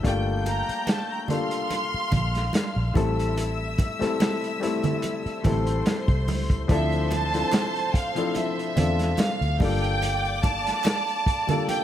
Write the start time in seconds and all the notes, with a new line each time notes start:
0.03 G1 G3 A3 A#3 D4 F4 G5 G6, kick, closed hi-hat, muted conga
0.46 A#5, closed hi-hat, muted conga
0.69 muted fingered electric bass stroke, closed hi-hat
0.87 A5, snare, closed hi-hat, high conga
1.11 A#5
1.28 G3 A#3 D4 F4 A4 F5 C6 F6, closed hi-hat, low conga
1.51 closed hi-hat
1.70 closed hi-hat, muted conga
1.94 muted fingered electric bass stroke
2.12 A#1, kick, closed hi-hat, muted conga, low conga
2.35 snare, closed hi-hat
2.53 snare, closed hi-hat, high conga
2.76 A#1
2.94 A1 G3 A3 C4 E4 A4 E5 E6, kick, closed hi-hat, high conga
3.20 closed hi-hat
3.37 closed hi-hat, muted conga
3.78 kick, closed hi-hat, muted conga
3.99 G3 A3 C4 E4 A4, muted fingered electric bass stroke, snare, closed hi-hat
4.20 snare, closed hi-hat, high conga
4.44 closed hi-hat
4.60 G3 A3 C4 E4 A4, closed hi-hat
4.84 closed hi-hat, low conga
5.02 closed hi-hat, muted conga
5.26 muted fingered electric bass stroke, closed hi-hat
5.44 A1 G3 A3 C4 E4 A4 C5 C6, kick, closed hi-hat, muted conga, low conga
5.67 closed hi-hat
5.86 snare, closed hi-hat, high conga
6.08 C2, kick, closed hi-hat
6.28 C#2, open hi-hat, high conga
6.50 kick, closed hi-hat
6.68 D2 F3 C4 D4 E4 A4 C5 E5 C6, kick, closed hi-hat, muted conga
6.92 closed hi-hat
7.11 A5, closed hi-hat, muted conga
7.33 F3 C4 D4 E4 A4, snare, closed hi-hat
7.52 snare, clap, closed hi-hat, high conga
7.76 closed hi-hat
7.94 F5, kick, closed hi-hat
8.15 F3 C4 D4 E4 A4, closed hi-hat
8.35 E5, closed hi-hat, muted conga
8.59 closed hi-hat
8.76 E2 C4 D4 F4 A4, closed hi-hat, muted conga, low conga
8.99 snare, closed hi-hat
9.18 F5, snare, clap, closed hi-hat, high conga
9.41 D2, closed hi-hat
9.59 G1 G3 A#3 D4 F4 A4 D5 G5 D6, kick, open hi-hat, high conga
9.84 closed hi-hat
10.02 closed hi-hat, muted conga
10.25 closed hi-hat
10.43 A5, kick, closed hi-hat, muted conga
10.67 snare, closed hi-hat
10.84 snare, clap, closed hi-hat, high conga
11.08 closed hi-hat
11.27 kick, closed hi-hat
11.47 G3 A#3 D4 F4 A4, closed hi-hat, low conga
11.68 G5, closed hi-hat, muted conga